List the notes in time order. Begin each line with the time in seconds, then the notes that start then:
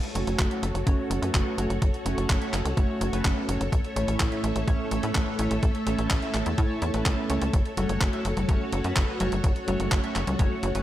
Already playing: F#4 A4 C#5
0.03 closed hi-hat
0.15 F#1 A3 C#4 F#4 C#5, closed hi-hat
0.27 F#1, closed hi-hat
0.39 F#1, kick, clap, closed hi-hat
0.51 A3 C#4 F#4 E5, closed hi-hat
0.63 F#1, closed hi-hat
0.75 F#1, closed hi-hat
0.87 F#1 A3 C#4 F#4 C#5, kick, closed hi-hat
1.10 F#1, closed hi-hat
1.22 F#2 A3 C#4 F#4 B4, closed hi-hat
1.34 F#1, kick, clap, closed hi-hat
1.58 F#1 A3 C#4 F#4 C#5, closed hi-hat
1.70 F#1, closed hi-hat
1.82 F#1, kick, closed hi-hat
1.94 closed hi-hat
2.06 F#1 A3 C#4 F#4 C#5, closed hi-hat
2.18 F#1, closed hi-hat
2.30 F#1, kick, clap, closed hi-hat
2.42 A3 C#4 F#4 E5, closed hi-hat
2.53 F#1, clap, closed hi-hat
2.65 C#2, closed hi-hat
2.77 F#1 A3 C#4 F#4 C#5, kick, closed hi-hat
3.01 F#1, closed hi-hat
3.13 F#1 A3 C#4 F#4 B4, closed hi-hat
3.25 F#1, kick, clap, closed hi-hat
3.49 F#1 A2 A3 C#4 F#4 C#5, closed hi-hat
3.61 F#1, closed hi-hat
3.72 A1 A3 E5, kick, closed hi-hat
3.85 closed hi-hat
3.96 A1 A2 A3 C#4 E4 C#5, closed hi-hat
4.08 A1, closed hi-hat
4.20 A1, kick, clap, closed hi-hat
4.32 A2 A3 C#4 E4 E5, closed hi-hat
4.44 A1, closed hi-hat
4.56 A1, closed hi-hat
4.68 A1 A2 A3 C#4 E4 C#5, kick, closed hi-hat
4.91 A1, closed hi-hat
5.03 A2 A3 C#4 E4 B4, closed hi-hat
5.15 A1, kick, clap, closed hi-hat
5.39 A1 A2 A3 C#4 E4 C#5, closed hi-hat
5.51 A1, closed hi-hat
5.63 A1, kick, closed hi-hat
5.75 closed hi-hat
5.87 A1 A2 A3 C#4 E4 C#5, closed hi-hat
5.99 A1, closed hi-hat
6.10 A1, kick, clap, closed hi-hat
6.22 A2 A3 C#4 E4 E5, closed hi-hat
6.34 A1, clap, closed hi-hat
6.46 E2, closed hi-hat
6.58 A2 A3 C#4 E4 C#5, kick, closed hi-hat
6.82 E2, closed hi-hat
6.94 A1 A2 A3 C#4 E4 B4, closed hi-hat
7.06 C#2, kick, clap, closed hi-hat
7.30 C#2 A3 C#4 E4 C#5, closed hi-hat
7.42 C#2, closed hi-hat
7.53 F#1 F#4 C#5, kick, closed hi-hat
7.66 closed hi-hat
7.77 F#1 A3 C#4 F#4 C#5, closed hi-hat, high conga
7.89 F#1, closed hi-hat
8.01 F#1, kick, clap, closed hi-hat
8.13 A3 C#4 F#4 E5, closed hi-hat
8.25 F#1, closed hi-hat
8.37 F#1, closed hi-hat, high conga
8.49 F#1 A3 C#4 F#4 C#5, kick, closed hi-hat
8.73 F#1, closed hi-hat
8.84 F#2 A3 C#4 F#4 B4, closed hi-hat
8.96 F#1, kick, clap, closed hi-hat
9.20 F#1 A3 C#4 F#4 C#5, closed hi-hat, high conga
9.32 F#1, closed hi-hat
9.44 F#1, kick, closed hi-hat
9.56 closed hi-hat
9.68 F#1 A3 C#4 F#4 C#5, closed hi-hat, high conga
9.80 F#1, closed hi-hat
9.92 F#1, kick, clap, closed hi-hat
10.04 A3 C#4 F#4 E5, closed hi-hat
10.16 F#1, clap, closed hi-hat
10.27 C#2, closed hi-hat, high conga
10.39 F#1 A3 C#4 F#4 C#5, kick, closed hi-hat
10.63 F#1, closed hi-hat
10.75 F#1 A3 C#4 F#4 B4, closed hi-hat